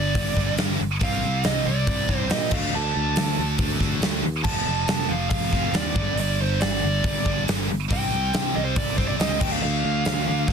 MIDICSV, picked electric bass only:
0, 0, Header, 1, 2, 480
1, 0, Start_track
1, 0, Tempo, 430416
1, 1130, Time_signature, 4, 2, 24, 8
1, 11740, End_track
2, 0, Start_track
2, 0, Title_t, "Picked electric bass"
2, 0, Program_c, 0, 34
2, 0, Note_on_c, 0, 31, 88
2, 162, Note_off_c, 0, 31, 0
2, 177, Note_on_c, 0, 31, 92
2, 392, Note_off_c, 0, 31, 0
2, 405, Note_on_c, 0, 31, 86
2, 626, Note_off_c, 0, 31, 0
2, 666, Note_on_c, 0, 31, 96
2, 878, Note_off_c, 0, 31, 0
2, 902, Note_on_c, 0, 31, 83
2, 1115, Note_off_c, 0, 31, 0
2, 1133, Note_on_c, 0, 36, 89
2, 1351, Note_off_c, 0, 36, 0
2, 1394, Note_on_c, 0, 36, 96
2, 1602, Note_off_c, 0, 36, 0
2, 1626, Note_on_c, 0, 36, 88
2, 1837, Note_off_c, 0, 36, 0
2, 1856, Note_on_c, 0, 36, 90
2, 2072, Note_off_c, 0, 36, 0
2, 2097, Note_on_c, 0, 36, 95
2, 2531, Note_off_c, 0, 36, 0
2, 2583, Note_on_c, 0, 46, 92
2, 2796, Note_off_c, 0, 46, 0
2, 2814, Note_on_c, 0, 38, 87
2, 3031, Note_off_c, 0, 38, 0
2, 3074, Note_on_c, 0, 38, 94
2, 3282, Note_off_c, 0, 38, 0
2, 3298, Note_on_c, 0, 38, 92
2, 3513, Note_off_c, 0, 38, 0
2, 3549, Note_on_c, 0, 38, 83
2, 3759, Note_off_c, 0, 38, 0
2, 3778, Note_on_c, 0, 38, 82
2, 3993, Note_off_c, 0, 38, 0
2, 4008, Note_on_c, 0, 38, 91
2, 4227, Note_off_c, 0, 38, 0
2, 4242, Note_on_c, 0, 38, 81
2, 4464, Note_off_c, 0, 38, 0
2, 4472, Note_on_c, 0, 38, 84
2, 4699, Note_off_c, 0, 38, 0
2, 4721, Note_on_c, 0, 39, 83
2, 4943, Note_off_c, 0, 39, 0
2, 4966, Note_on_c, 0, 29, 86
2, 5186, Note_off_c, 0, 29, 0
2, 5203, Note_on_c, 0, 29, 89
2, 5424, Note_off_c, 0, 29, 0
2, 5440, Note_on_c, 0, 29, 91
2, 5662, Note_off_c, 0, 29, 0
2, 5684, Note_on_c, 0, 29, 88
2, 5905, Note_off_c, 0, 29, 0
2, 6407, Note_on_c, 0, 39, 89
2, 6626, Note_off_c, 0, 39, 0
2, 6641, Note_on_c, 0, 31, 85
2, 6863, Note_off_c, 0, 31, 0
2, 6888, Note_on_c, 0, 31, 93
2, 7106, Note_off_c, 0, 31, 0
2, 7139, Note_on_c, 0, 31, 91
2, 7352, Note_off_c, 0, 31, 0
2, 7387, Note_on_c, 0, 31, 90
2, 7597, Note_off_c, 0, 31, 0
2, 7618, Note_on_c, 0, 31, 87
2, 7831, Note_off_c, 0, 31, 0
2, 7852, Note_on_c, 0, 31, 93
2, 8068, Note_off_c, 0, 31, 0
2, 8095, Note_on_c, 0, 31, 87
2, 8310, Note_off_c, 0, 31, 0
2, 8337, Note_on_c, 0, 31, 94
2, 8551, Note_off_c, 0, 31, 0
2, 8591, Note_on_c, 0, 31, 83
2, 8799, Note_off_c, 0, 31, 0
2, 8820, Note_on_c, 0, 36, 94
2, 9033, Note_off_c, 0, 36, 0
2, 9071, Note_on_c, 0, 36, 94
2, 9279, Note_off_c, 0, 36, 0
2, 9302, Note_on_c, 0, 36, 92
2, 9514, Note_off_c, 0, 36, 0
2, 9553, Note_on_c, 0, 36, 84
2, 9760, Note_off_c, 0, 36, 0
2, 10267, Note_on_c, 0, 37, 89
2, 10501, Note_off_c, 0, 37, 0
2, 10501, Note_on_c, 0, 38, 91
2, 10713, Note_off_c, 0, 38, 0
2, 10747, Note_on_c, 0, 38, 95
2, 10956, Note_off_c, 0, 38, 0
2, 10980, Note_on_c, 0, 38, 93
2, 11193, Note_off_c, 0, 38, 0
2, 11232, Note_on_c, 0, 38, 87
2, 11439, Note_off_c, 0, 38, 0
2, 11467, Note_on_c, 0, 38, 82
2, 11676, Note_off_c, 0, 38, 0
2, 11740, End_track
0, 0, End_of_file